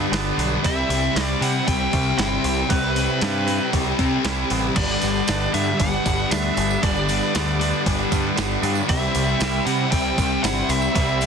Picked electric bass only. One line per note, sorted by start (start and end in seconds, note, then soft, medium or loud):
0.12 0.30 G1 medium
0.38 0.56 B1 loud
0.64 0.82 C2 loud
0.89 1.08 C2 medium
1.15 1.34 C2 loud
1.41 1.59 C3 medium
1.68 1.86 C2 medium
1.93 2.11 C2 loud
2.18 2.37 G1 medium
2.44 2.63 C2 loud
2.70 3.07 C2 loud
3.22 3.58 G2 loud
3.73 3.91 C2 medium
3.99 4.17 C3 loud
4.25 4.43 C2 medium
4.51 4.69 A1 loud
4.76 4.94 G1 loud
5.03 5.21 G1 loud
5.28 5.46 G1 loud
5.54 5.72 G2 medium
5.80 5.98 G1 medium
6.06 6.24 G1 medium
6.31 6.49 D2 medium
6.57 6.75 G1 loud
6.83 7.19 G1 loud
7.35 7.71 D2 loud
7.86 8.04 G1 medium
8.12 8.30 G2 loud
8.38 8.56 G1 medium
8.63 8.81 G2 loud
8.89 9.07 C2 loud
9.15 9.33 C2 loud
9.41 9.59 C2 loud
9.66 9.84 C3 loud
9.92 10.10 C2 loud
10.18 10.36 C2 loud
10.43 10.62 G1 medium
10.69 10.87 C2 loud
10.95 11.26 C2 loud